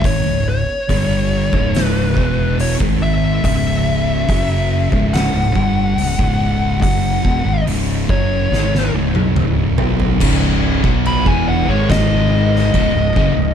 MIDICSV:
0, 0, Header, 1, 5, 480
1, 0, Start_track
1, 0, Tempo, 846262
1, 27, Time_signature, 4, 2, 24, 8
1, 7680, End_track
2, 0, Start_track
2, 0, Title_t, "Lead electric guitar"
2, 0, Program_c, 0, 29
2, 33, Note_on_c, 0, 73, 88
2, 272, Note_off_c, 0, 73, 0
2, 278, Note_on_c, 0, 73, 81
2, 1038, Note_off_c, 0, 73, 0
2, 1038, Note_on_c, 0, 71, 81
2, 1454, Note_off_c, 0, 71, 0
2, 1480, Note_on_c, 0, 73, 78
2, 1543, Note_off_c, 0, 73, 0
2, 1716, Note_on_c, 0, 76, 94
2, 1937, Note_off_c, 0, 76, 0
2, 1955, Note_on_c, 0, 76, 96
2, 2914, Note_on_c, 0, 78, 91
2, 2943, Note_off_c, 0, 76, 0
2, 3851, Note_off_c, 0, 78, 0
2, 3870, Note_on_c, 0, 78, 91
2, 4328, Note_off_c, 0, 78, 0
2, 4594, Note_on_c, 0, 73, 111
2, 5050, Note_off_c, 0, 73, 0
2, 6279, Note_on_c, 0, 83, 93
2, 6390, Note_off_c, 0, 83, 0
2, 6392, Note_on_c, 0, 80, 86
2, 6506, Note_off_c, 0, 80, 0
2, 6515, Note_on_c, 0, 78, 91
2, 6628, Note_off_c, 0, 78, 0
2, 6632, Note_on_c, 0, 73, 85
2, 6746, Note_off_c, 0, 73, 0
2, 6751, Note_on_c, 0, 75, 94
2, 7680, Note_off_c, 0, 75, 0
2, 7680, End_track
3, 0, Start_track
3, 0, Title_t, "Distorted electric guitar"
3, 0, Program_c, 1, 30
3, 24, Note_on_c, 1, 44, 92
3, 28, Note_on_c, 1, 51, 103
3, 139, Note_off_c, 1, 44, 0
3, 140, Note_off_c, 1, 51, 0
3, 147, Note_on_c, 1, 37, 70
3, 152, Note_on_c, 1, 44, 69
3, 340, Note_off_c, 1, 37, 0
3, 342, Note_off_c, 1, 44, 0
3, 506, Note_on_c, 1, 43, 91
3, 509, Note_on_c, 1, 50, 99
3, 511, Note_on_c, 1, 55, 105
3, 861, Note_off_c, 1, 43, 0
3, 863, Note_off_c, 1, 50, 0
3, 864, Note_off_c, 1, 55, 0
3, 868, Note_on_c, 1, 37, 84
3, 870, Note_on_c, 1, 44, 86
3, 872, Note_on_c, 1, 49, 95
3, 1222, Note_off_c, 1, 37, 0
3, 1223, Note_off_c, 1, 44, 0
3, 1224, Note_off_c, 1, 49, 0
3, 1227, Note_on_c, 1, 40, 84
3, 1228, Note_on_c, 1, 47, 96
3, 1232, Note_on_c, 1, 52, 97
3, 1582, Note_off_c, 1, 40, 0
3, 1583, Note_off_c, 1, 47, 0
3, 1585, Note_off_c, 1, 52, 0
3, 1585, Note_on_c, 1, 44, 85
3, 1587, Note_on_c, 1, 51, 94
3, 1589, Note_on_c, 1, 56, 104
3, 1941, Note_off_c, 1, 44, 0
3, 1942, Note_off_c, 1, 51, 0
3, 1943, Note_off_c, 1, 56, 0
3, 1948, Note_on_c, 1, 37, 94
3, 1948, Note_on_c, 1, 44, 94
3, 1951, Note_on_c, 1, 49, 100
3, 2423, Note_off_c, 1, 37, 0
3, 2423, Note_off_c, 1, 44, 0
3, 2423, Note_off_c, 1, 49, 0
3, 2427, Note_on_c, 1, 42, 89
3, 2430, Note_on_c, 1, 49, 105
3, 2431, Note_on_c, 1, 54, 99
3, 2783, Note_off_c, 1, 42, 0
3, 2784, Note_off_c, 1, 49, 0
3, 2785, Note_off_c, 1, 54, 0
3, 2790, Note_on_c, 1, 37, 83
3, 2793, Note_on_c, 1, 44, 90
3, 2795, Note_on_c, 1, 49, 100
3, 3024, Note_off_c, 1, 37, 0
3, 3026, Note_off_c, 1, 44, 0
3, 3027, Note_off_c, 1, 49, 0
3, 3031, Note_on_c, 1, 37, 65
3, 3035, Note_on_c, 1, 44, 75
3, 3149, Note_off_c, 1, 37, 0
3, 3152, Note_on_c, 1, 43, 90
3, 3153, Note_off_c, 1, 44, 0
3, 3154, Note_on_c, 1, 55, 98
3, 3155, Note_on_c, 1, 50, 93
3, 3385, Note_off_c, 1, 43, 0
3, 3386, Note_off_c, 1, 55, 0
3, 3387, Note_off_c, 1, 50, 0
3, 3389, Note_on_c, 1, 37, 70
3, 3390, Note_on_c, 1, 44, 77
3, 3502, Note_off_c, 1, 37, 0
3, 3504, Note_off_c, 1, 44, 0
3, 3509, Note_on_c, 1, 37, 88
3, 3511, Note_on_c, 1, 44, 95
3, 3513, Note_on_c, 1, 49, 95
3, 3863, Note_off_c, 1, 37, 0
3, 3864, Note_off_c, 1, 44, 0
3, 3866, Note_off_c, 1, 49, 0
3, 3873, Note_on_c, 1, 42, 84
3, 3874, Note_on_c, 1, 49, 103
3, 3877, Note_on_c, 1, 54, 101
3, 4105, Note_off_c, 1, 42, 0
3, 4106, Note_off_c, 1, 49, 0
3, 4107, Note_off_c, 1, 54, 0
3, 4112, Note_on_c, 1, 40, 91
3, 4114, Note_on_c, 1, 47, 115
3, 4225, Note_off_c, 1, 40, 0
3, 4226, Note_off_c, 1, 47, 0
3, 4236, Note_on_c, 1, 44, 88
3, 4236, Note_on_c, 1, 51, 88
3, 4347, Note_off_c, 1, 44, 0
3, 4347, Note_off_c, 1, 51, 0
3, 4354, Note_on_c, 1, 37, 91
3, 4358, Note_on_c, 1, 44, 102
3, 4360, Note_on_c, 1, 49, 96
3, 4586, Note_off_c, 1, 37, 0
3, 4588, Note_off_c, 1, 44, 0
3, 4589, Note_off_c, 1, 49, 0
3, 4592, Note_on_c, 1, 42, 99
3, 4596, Note_on_c, 1, 49, 92
3, 4597, Note_on_c, 1, 54, 96
3, 4824, Note_off_c, 1, 42, 0
3, 4827, Note_off_c, 1, 49, 0
3, 4827, Note_off_c, 1, 54, 0
3, 4831, Note_on_c, 1, 44, 88
3, 4833, Note_on_c, 1, 51, 84
3, 4834, Note_on_c, 1, 56, 97
3, 5063, Note_off_c, 1, 44, 0
3, 5065, Note_off_c, 1, 51, 0
3, 5065, Note_off_c, 1, 56, 0
3, 5073, Note_on_c, 1, 37, 82
3, 5077, Note_on_c, 1, 44, 103
3, 5185, Note_off_c, 1, 37, 0
3, 5187, Note_off_c, 1, 44, 0
3, 5188, Note_on_c, 1, 47, 96
3, 5191, Note_on_c, 1, 54, 108
3, 5302, Note_off_c, 1, 47, 0
3, 5304, Note_off_c, 1, 54, 0
3, 5306, Note_on_c, 1, 37, 89
3, 5310, Note_on_c, 1, 44, 92
3, 5310, Note_on_c, 1, 49, 104
3, 5541, Note_off_c, 1, 37, 0
3, 5543, Note_off_c, 1, 44, 0
3, 5543, Note_off_c, 1, 49, 0
3, 5548, Note_on_c, 1, 47, 95
3, 5549, Note_on_c, 1, 54, 89
3, 5551, Note_on_c, 1, 59, 97
3, 5780, Note_off_c, 1, 47, 0
3, 5782, Note_off_c, 1, 54, 0
3, 5782, Note_on_c, 1, 37, 93
3, 5783, Note_off_c, 1, 59, 0
3, 5787, Note_on_c, 1, 44, 92
3, 5788, Note_on_c, 1, 49, 102
3, 6136, Note_off_c, 1, 44, 0
3, 6137, Note_off_c, 1, 37, 0
3, 6139, Note_off_c, 1, 49, 0
3, 6139, Note_on_c, 1, 47, 97
3, 6139, Note_on_c, 1, 54, 98
3, 6141, Note_on_c, 1, 59, 93
3, 6376, Note_off_c, 1, 47, 0
3, 6376, Note_off_c, 1, 54, 0
3, 6377, Note_off_c, 1, 59, 0
3, 6381, Note_on_c, 1, 40, 91
3, 6383, Note_on_c, 1, 47, 105
3, 6386, Note_on_c, 1, 52, 97
3, 6617, Note_off_c, 1, 40, 0
3, 6618, Note_off_c, 1, 47, 0
3, 6619, Note_off_c, 1, 52, 0
3, 6623, Note_on_c, 1, 44, 89
3, 6626, Note_on_c, 1, 51, 99
3, 6627, Note_on_c, 1, 56, 100
3, 7216, Note_off_c, 1, 44, 0
3, 7217, Note_off_c, 1, 51, 0
3, 7218, Note_off_c, 1, 56, 0
3, 7226, Note_on_c, 1, 37, 88
3, 7228, Note_on_c, 1, 44, 114
3, 7333, Note_off_c, 1, 37, 0
3, 7335, Note_off_c, 1, 44, 0
3, 7340, Note_on_c, 1, 37, 66
3, 7342, Note_on_c, 1, 44, 76
3, 7457, Note_off_c, 1, 37, 0
3, 7459, Note_on_c, 1, 42, 100
3, 7460, Note_off_c, 1, 44, 0
3, 7462, Note_on_c, 1, 49, 112
3, 7574, Note_off_c, 1, 42, 0
3, 7576, Note_off_c, 1, 49, 0
3, 7581, Note_on_c, 1, 37, 68
3, 7584, Note_on_c, 1, 44, 84
3, 7680, Note_off_c, 1, 37, 0
3, 7680, Note_off_c, 1, 44, 0
3, 7680, End_track
4, 0, Start_track
4, 0, Title_t, "Fingered electric bass"
4, 0, Program_c, 2, 33
4, 25, Note_on_c, 2, 32, 95
4, 138, Note_off_c, 2, 32, 0
4, 148, Note_on_c, 2, 25, 76
4, 372, Note_off_c, 2, 25, 0
4, 506, Note_on_c, 2, 31, 99
4, 846, Note_off_c, 2, 31, 0
4, 867, Note_on_c, 2, 25, 92
4, 1207, Note_off_c, 2, 25, 0
4, 1230, Note_on_c, 2, 28, 97
4, 1569, Note_off_c, 2, 28, 0
4, 1589, Note_on_c, 2, 32, 89
4, 1928, Note_off_c, 2, 32, 0
4, 1949, Note_on_c, 2, 25, 95
4, 2408, Note_off_c, 2, 25, 0
4, 2431, Note_on_c, 2, 30, 101
4, 2769, Note_off_c, 2, 30, 0
4, 2789, Note_on_c, 2, 25, 95
4, 3014, Note_off_c, 2, 25, 0
4, 3031, Note_on_c, 2, 25, 77
4, 3143, Note_off_c, 2, 25, 0
4, 3149, Note_on_c, 2, 31, 95
4, 3374, Note_off_c, 2, 31, 0
4, 3390, Note_on_c, 2, 25, 83
4, 3503, Note_off_c, 2, 25, 0
4, 3513, Note_on_c, 2, 25, 92
4, 3850, Note_off_c, 2, 25, 0
4, 3873, Note_on_c, 2, 30, 92
4, 4096, Note_off_c, 2, 30, 0
4, 4110, Note_on_c, 2, 28, 96
4, 4223, Note_off_c, 2, 28, 0
4, 4230, Note_on_c, 2, 32, 101
4, 4343, Note_off_c, 2, 32, 0
4, 4349, Note_on_c, 2, 25, 96
4, 4573, Note_off_c, 2, 25, 0
4, 4592, Note_on_c, 2, 30, 89
4, 4815, Note_off_c, 2, 30, 0
4, 4829, Note_on_c, 2, 32, 92
4, 5053, Note_off_c, 2, 32, 0
4, 5072, Note_on_c, 2, 25, 95
4, 5183, Note_off_c, 2, 25, 0
4, 5195, Note_on_c, 2, 35, 90
4, 5305, Note_off_c, 2, 35, 0
4, 5307, Note_on_c, 2, 25, 97
4, 5532, Note_off_c, 2, 25, 0
4, 5545, Note_on_c, 2, 35, 94
4, 5770, Note_off_c, 2, 35, 0
4, 5788, Note_on_c, 2, 25, 100
4, 6125, Note_off_c, 2, 25, 0
4, 6148, Note_on_c, 2, 35, 104
4, 6371, Note_off_c, 2, 35, 0
4, 6388, Note_on_c, 2, 28, 97
4, 6610, Note_off_c, 2, 28, 0
4, 6626, Note_on_c, 2, 32, 100
4, 7202, Note_off_c, 2, 32, 0
4, 7226, Note_on_c, 2, 25, 97
4, 7337, Note_off_c, 2, 25, 0
4, 7343, Note_on_c, 2, 25, 78
4, 7455, Note_off_c, 2, 25, 0
4, 7464, Note_on_c, 2, 30, 92
4, 7575, Note_off_c, 2, 30, 0
4, 7581, Note_on_c, 2, 25, 76
4, 7680, Note_off_c, 2, 25, 0
4, 7680, End_track
5, 0, Start_track
5, 0, Title_t, "Drums"
5, 24, Note_on_c, 9, 36, 105
5, 25, Note_on_c, 9, 46, 56
5, 81, Note_off_c, 9, 36, 0
5, 81, Note_off_c, 9, 46, 0
5, 506, Note_on_c, 9, 36, 104
5, 507, Note_on_c, 9, 46, 61
5, 563, Note_off_c, 9, 36, 0
5, 564, Note_off_c, 9, 46, 0
5, 867, Note_on_c, 9, 36, 110
5, 924, Note_off_c, 9, 36, 0
5, 990, Note_on_c, 9, 46, 56
5, 1001, Note_on_c, 9, 38, 105
5, 1047, Note_off_c, 9, 46, 0
5, 1058, Note_off_c, 9, 38, 0
5, 1229, Note_on_c, 9, 36, 102
5, 1286, Note_off_c, 9, 36, 0
5, 1471, Note_on_c, 9, 46, 59
5, 1528, Note_off_c, 9, 46, 0
5, 1590, Note_on_c, 9, 36, 105
5, 1647, Note_off_c, 9, 36, 0
5, 1951, Note_on_c, 9, 36, 100
5, 1951, Note_on_c, 9, 46, 62
5, 2007, Note_off_c, 9, 36, 0
5, 2008, Note_off_c, 9, 46, 0
5, 2431, Note_on_c, 9, 36, 105
5, 2432, Note_on_c, 9, 46, 56
5, 2488, Note_off_c, 9, 36, 0
5, 2489, Note_off_c, 9, 46, 0
5, 2792, Note_on_c, 9, 36, 106
5, 2848, Note_off_c, 9, 36, 0
5, 2913, Note_on_c, 9, 46, 59
5, 2924, Note_on_c, 9, 38, 112
5, 2969, Note_off_c, 9, 46, 0
5, 2981, Note_off_c, 9, 38, 0
5, 3151, Note_on_c, 9, 36, 108
5, 3208, Note_off_c, 9, 36, 0
5, 3393, Note_on_c, 9, 46, 54
5, 3449, Note_off_c, 9, 46, 0
5, 3511, Note_on_c, 9, 36, 112
5, 3568, Note_off_c, 9, 36, 0
5, 3871, Note_on_c, 9, 36, 104
5, 3871, Note_on_c, 9, 46, 56
5, 3927, Note_off_c, 9, 46, 0
5, 3928, Note_off_c, 9, 36, 0
5, 4111, Note_on_c, 9, 36, 107
5, 4168, Note_off_c, 9, 36, 0
5, 4352, Note_on_c, 9, 46, 54
5, 4409, Note_off_c, 9, 46, 0
5, 4590, Note_on_c, 9, 36, 116
5, 4647, Note_off_c, 9, 36, 0
5, 4839, Note_on_c, 9, 38, 62
5, 4896, Note_off_c, 9, 38, 0
5, 4962, Note_on_c, 9, 38, 58
5, 5018, Note_off_c, 9, 38, 0
5, 5189, Note_on_c, 9, 48, 71
5, 5246, Note_off_c, 9, 48, 0
5, 5311, Note_on_c, 9, 47, 85
5, 5368, Note_off_c, 9, 47, 0
5, 5548, Note_on_c, 9, 43, 89
5, 5605, Note_off_c, 9, 43, 0
5, 5670, Note_on_c, 9, 43, 80
5, 5727, Note_off_c, 9, 43, 0
5, 5788, Note_on_c, 9, 36, 107
5, 5791, Note_on_c, 9, 49, 120
5, 5791, Note_on_c, 9, 57, 62
5, 5845, Note_off_c, 9, 36, 0
5, 5848, Note_off_c, 9, 49, 0
5, 5848, Note_off_c, 9, 57, 0
5, 6148, Note_on_c, 9, 36, 110
5, 6204, Note_off_c, 9, 36, 0
5, 6270, Note_on_c, 9, 57, 60
5, 6327, Note_off_c, 9, 57, 0
5, 6388, Note_on_c, 9, 36, 106
5, 6444, Note_off_c, 9, 36, 0
5, 6747, Note_on_c, 9, 36, 109
5, 6748, Note_on_c, 9, 57, 59
5, 6759, Note_on_c, 9, 38, 115
5, 6804, Note_off_c, 9, 36, 0
5, 6804, Note_off_c, 9, 57, 0
5, 6816, Note_off_c, 9, 38, 0
5, 7123, Note_on_c, 9, 38, 34
5, 7179, Note_off_c, 9, 38, 0
5, 7226, Note_on_c, 9, 36, 103
5, 7228, Note_on_c, 9, 57, 55
5, 7283, Note_off_c, 9, 36, 0
5, 7285, Note_off_c, 9, 57, 0
5, 7465, Note_on_c, 9, 36, 101
5, 7522, Note_off_c, 9, 36, 0
5, 7680, End_track
0, 0, End_of_file